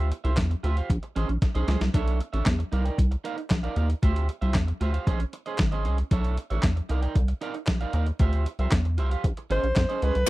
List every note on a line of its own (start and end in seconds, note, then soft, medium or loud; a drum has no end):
0.00 0.12 D2 medium
0.11 muted clean electric guitar stroke soft
0.11 closed hi-hat medium
0.24 0.39 C2 medium
0.24 0.36 F4 medium
0.24 0.36 G4 medium
0.24 0.36 C5 medium
0.24 0.36 E5 medium
0.24 closed hi-hat soft
0.37 0.55 E2 loud
0.37 muted clean electric guitar stroke soft
0.37 kick loud
0.37 snare loud
0.37 clap medium
0.37 closed hi-hat medium
0.51 muted clean electric guitar stroke soft
0.51 closed hi-hat soft
0.63 0.82 D2 medium
0.63 0.77 F4 medium
0.63 0.77 G4 medium
0.63 0.76 C5 medium
0.63 0.76 E5 medium
0.63 closed hi-hat medium
0.77 0.90 F4 soft
0.77 0.89 G4 medium
0.77 0.89 C5 medium
0.77 0.89 F5 medium
0.77 closed hi-hat soft
0.90 0.99 A#1 loud
0.90 kick medium
0.90 closed hi-hat medium
1.03 muted clean electric guitar stroke soft
1.03 closed hi-hat soft
1.16 1.25 A1 medium
1.16 1.31 C#4 medium
1.16 1.29 G#4 medium
1.16 1.29 C5 medium
1.16 1.28 D#5 medium
1.16 closed hi-hat medium
1.29 1.38 A#1 medium
1.29 muted clean electric guitar stroke soft
1.29 closed hi-hat soft
1.42 muted clean electric guitar stroke soft
1.42 kick loud
1.42 snare medium
1.42 closed hi-hat medium
1.55 1.64 B1 medium
1.55 1.66 C#4 medium
1.55 1.67 G#4 medium
1.55 1.68 C5 medium
1.55 1.68 D#5 medium
1.55 closed hi-hat soft
1.68 1.77 C#2 loud
1.68 1.80 C#4 medium
1.68 1.80 G#4 medium
1.68 1.80 C5 medium
1.68 1.79 D#5 medium
1.68 snare medium
1.68 closed hi-hat medium
1.81 1.90 C2 medium
1.81 muted clean electric guitar stroke soft
1.81 snare medium
1.81 closed hi-hat soft
1.94 2.21 B1 medium
1.94 2.18 D4 medium
1.94 2.18 A4 medium
1.94 2.19 C#5 medium
1.94 2.19 E5 medium
1.94 kick loud
1.94 closed hi-hat medium
2.08 closed hi-hat soft
2.20 muted clean electric guitar stroke soft
2.20 closed hi-hat medium
2.33 2.42 A1 medium
2.33 2.45 D4 medium
2.33 2.45 A4 medium
2.33 2.45 C#5 medium
2.33 2.45 E5 medium
2.33 closed hi-hat soft
2.46 2.64 E2 medium
2.46 muted clean electric guitar stroke soft
2.46 kick loud
2.46 snare loud
2.46 clap medium
2.46 closed hi-hat medium
2.59 muted clean electric guitar stroke medium
2.59 closed hi-hat soft
2.72 2.90 C2 medium
2.72 2.86 D#4 medium
2.72 2.85 A#4 medium
2.72 2.85 D5 medium
2.72 2.85 F5 medium
2.72 closed hi-hat medium
2.85 2.98 D#4 soft
2.85 2.98 A#4 soft
2.85 2.98 D5 medium
2.85 2.97 G5 medium
2.85 closed hi-hat medium
2.98 3.16 C2 loud
2.98 kick medium
2.98 closed hi-hat medium
3.11 muted clean electric guitar stroke soft
3.11 closed hi-hat soft
3.24 3.40 D#4 medium
3.24 3.37 A#4 medium
3.24 3.37 D5 medium
3.24 3.36 F5 loud
3.24 closed hi-hat medium
3.37 muted clean electric guitar stroke soft
3.37 closed hi-hat soft
3.50 3.68 A#1 medium
3.50 muted clean electric guitar stroke soft
3.50 kick loud
3.50 snare loud
3.50 clap medium
3.50 closed hi-hat medium
3.63 3.75 D#4 medium
3.63 3.76 A#4 medium
3.63 3.76 D5 medium
3.63 3.77 F5 medium
3.63 closed hi-hat soft
3.76 3.94 D#2 loud
3.76 3.88 D#4 medium
3.76 3.89 A#4 medium
3.76 3.89 D5 medium
3.76 3.88 F5 medium
3.76 closed hi-hat medium
3.89 muted clean electric guitar stroke soft
3.89 closed hi-hat medium
4.02 4.30 D2 medium
4.02 4.26 F4 medium
4.02 4.27 G4 medium
4.02 4.27 C5 medium
4.02 4.27 E5 medium
4.02 kick loud
4.02 closed hi-hat medium
4.16 closed hi-hat medium
4.29 muted clean electric guitar stroke soft
4.29 closed hi-hat medium
4.41 4.56 C2 medium
4.41 4.53 F4 medium
4.41 4.54 G4 soft
4.41 4.54 C5 medium
4.41 4.54 E5 medium
4.41 closed hi-hat soft
4.54 4.73 E2 medium
4.54 muted clean electric guitar stroke soft
4.54 kick loud
4.54 snare loud
4.54 clap medium
4.54 closed hi-hat medium
4.68 muted clean electric guitar stroke soft
4.68 closed hi-hat soft
4.81 4.99 D2 medium
4.81 4.94 F4 medium
4.81 4.94 G4 medium
4.81 4.93 C5 medium
4.81 4.93 E5 medium
4.81 closed hi-hat medium
4.94 5.06 F4 soft
4.94 5.06 G4 soft
4.94 5.06 C5 medium
4.94 5.06 F5 medium
4.94 closed hi-hat medium
5.06 5.25 A#1 loud
5.06 5.22 C#4 medium
5.06 5.20 G#4 medium
5.06 5.20 C5 medium
5.06 5.19 D#5 medium
5.06 kick medium
5.06 closed hi-hat medium
5.20 muted clean electric guitar stroke soft
5.20 closed hi-hat medium
5.33 muted clean electric guitar stroke soft
5.33 closed hi-hat medium
5.46 5.58 C#4 soft
5.46 5.58 G#4 medium
5.46 5.58 C5 medium
5.46 5.58 D#5 medium
5.46 closed hi-hat soft
5.58 5.87 G#1 medium
5.58 muted clean electric guitar stroke soft
5.58 kick loud
5.58 snare loud
5.58 clap medium
5.58 closed hi-hat medium
5.72 5.84 C#4 medium
5.72 5.84 G#4 medium
5.72 5.85 C5 medium
5.72 5.85 D#5 medium
5.72 closed hi-hat soft
5.85 6.03 C2 loud
5.85 5.97 C#4 medium
5.85 5.97 G#4 medium
5.85 5.98 C5 medium
5.85 5.97 D#5 medium
5.85 closed hi-hat medium
5.98 muted clean electric guitar stroke medium
5.98 closed hi-hat medium
6.11 6.38 B1 loud
6.11 6.35 D4 medium
6.11 6.36 A4 medium
6.11 6.36 C#5 medium
6.11 6.36 E5 medium
6.11 kick loud
6.11 closed hi-hat medium
6.25 closed hi-hat soft
6.37 muted clean electric guitar stroke soft
6.37 closed hi-hat medium
6.50 6.60 A1 medium
6.50 6.62 D4 medium
6.50 6.63 A4 medium
6.50 6.63 C#5 medium
6.50 6.62 E5 medium
6.50 closed hi-hat soft
6.63 6.81 E2 medium
6.63 muted clean electric guitar stroke soft
6.63 kick loud
6.63 snare loud
6.63 clap medium
6.63 closed hi-hat loud
6.76 muted clean electric guitar stroke soft
6.76 closed hi-hat soft
6.89 7.08 C2 medium
6.89 7.03 D#4 medium
6.89 7.02 A#4 medium
6.89 7.01 D5 medium
6.89 7.02 F5 medium
6.89 closed hi-hat medium
7.02 7.15 D#4 medium
7.02 7.15 A#4 medium
7.02 7.15 D5 medium
7.02 7.14 G5 medium
7.02 closed hi-hat soft
7.15 7.33 C2 loud
7.15 kick loud
7.15 closed hi-hat medium
7.28 muted clean electric guitar stroke soft
7.28 closed hi-hat soft
7.41 7.57 D#4 medium
7.41 7.55 A#4 medium
7.41 7.54 D5 medium
7.41 7.54 F5 medium
7.41 closed hi-hat medium
7.54 muted clean electric guitar stroke soft
7.54 closed hi-hat soft
7.67 7.86 A#1 medium
7.67 muted clean electric guitar stroke soft
7.67 kick loud
7.67 snare loud
7.67 clap medium
7.67 closed hi-hat medium
7.81 7.93 D#4 medium
7.81 7.93 A#4 medium
7.81 7.94 D5 medium
7.81 7.94 F5 medium
7.81 closed hi-hat soft
7.93 8.12 D#2 loud
7.93 8.06 D#4 medium
7.93 8.06 A#4 medium
7.93 8.07 D5 medium
7.93 8.06 F5 medium
7.93 closed hi-hat medium
8.06 muted clean electric guitar stroke soft
8.06 closed hi-hat soft
8.19 8.47 D2 loud
8.19 8.44 F4 medium
8.19 8.44 G4 medium
8.19 8.45 C5 medium
8.19 8.45 E5 medium
8.19 kick loud
8.19 closed hi-hat medium
8.33 closed hi-hat soft
8.46 muted clean electric guitar stroke soft
8.46 closed hi-hat medium
8.59 8.68 C2 medium
8.59 8.71 F4 soft
8.59 8.72 G4 medium
8.59 8.72 C5 medium
8.59 8.71 E5 medium
8.59 closed hi-hat soft
8.71 9.00 E2 medium
8.71 muted clean electric guitar stroke soft
8.71 kick loud
8.71 snare loud
8.71 clap medium
8.71 closed hi-hat medium
8.85 muted clean electric guitar stroke soft
8.85 closed hi-hat soft
8.98 9.16 C2 medium
8.98 9.11 F4 medium
8.98 9.11 G4 medium
8.98 9.10 C5 medium
8.98 9.10 E5 medium
8.98 closed hi-hat medium
9.11 9.24 F4 soft
9.11 9.24 G4 medium
9.11 9.23 C5 medium
9.11 9.23 F5 medium
9.11 closed hi-hat medium
9.24 9.33 A#1 loud
9.24 kick medium
9.24 closed hi-hat medium
9.37 muted clean electric guitar stroke soft
9.37 closed hi-hat soft
9.50 9.59 G#1 loud
9.50 9.66 C#4 medium
9.50 9.63 G#4 medium
9.50 9.63 C5 medium
9.50 10.05 C5 medium
9.50 9.62 D#5 loud
9.50 closed hi-hat medium
9.63 9.72 A#1 medium
9.63 muted clean electric guitar stroke soft
9.63 closed hi-hat soft
9.76 9.85 F2 medium
9.76 muted clean electric guitar stroke soft
9.76 kick loud
9.76 snare medium
9.76 clap medium
9.76 closed hi-hat medium
9.89 10.01 C#4 medium
9.89 10.01 G#4 medium
9.89 10.02 C5 medium
9.89 10.02 D#5 medium
9.89 closed hi-hat soft
10.02 10.11 C#2 loud
10.02 10.14 C#4 medium
10.02 10.15 G#4 medium
10.02 10.29 B4 loud
10.02 10.14 C5 medium
10.02 10.14 D#5 medium
10.02 closed hi-hat medium
10.15 10.25 C2 medium
10.15 closed hi-hat medium